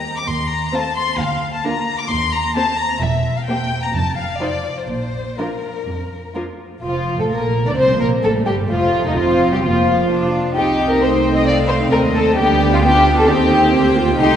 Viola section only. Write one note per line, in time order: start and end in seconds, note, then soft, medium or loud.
0.73 0.81 A3 soft
0.73 0.81 C4 soft
1.65 1.73 A#3 soft
1.65 1.73 D4 soft
2.56 2.64 A#3 soft
2.56 2.64 C4 soft
3.48 3.56 A#3 soft
3.48 3.57 C4 soft
4.41 4.49 F3 soft
4.41 4.49 D#4 soft
5.38 5.46 F3 soft
5.38 5.46 D4 soft
6.36 6.44 F3 soft
6.36 6.44 D4 soft
6.84 7.17 F3 medium
7.20 7.31 A3 soft
7.32 7.67 A#3 medium
7.67 7.71 D4 medium
7.78 8.00 C4 medium
8.01 8.23 A#3 medium
8.24 8.47 A3 medium
8.47 8.70 G3 medium
8.70 9.06 F3 medium
9.05 9.17 D#3 soft
9.18 9.52 F3 medium
9.53 9.64 G3 medium
9.65 10.32 F3 medium
10.56 10.98 C4 soft
10.56 11.88 D#4 medium
11.01 12.37 A3 medium
11.90 12.37 C4 medium
12.36 12.82 G3 medium
12.36 12.81 D4 medium
12.81 13.28 B3 medium
12.81 13.28 F4 medium
13.27 13.51 C4 medium
13.27 13.73 D#4 medium
13.49 14.18 A#3 medium
13.73 13.96 G4 medium
13.96 14.19 F4 medium
14.19 14.36 A3 medium
14.19 14.36 D#4 medium